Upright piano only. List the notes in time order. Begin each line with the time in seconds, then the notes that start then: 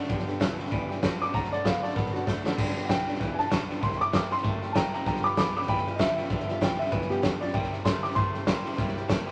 1.22 D6
1.34 A#5
1.53 D5
1.66 F5
1.83 D5
1.95 A#4
2.13 F#4
2.85 F#5
2.89 G5
3.34 G#5
3.39 A5
3.83 C6
3.97 C#6
4.01 D6
4.15 D6
4.32 C6
4.72 G5 A5
4.77 A#5
4.94 G5 A#5
5.07 G5 A#5
5.24 B5 D6
5.38 B5 D6
5.56 B5 D6
5.69 G5 B5
5.96 D#5
6.00 E5
6.63 G5
6.79 E5
6.92 B4
7.10 B3 G4
7.41 D5
7.54 G5
7.85 C6
8.03 D6
8.15 C6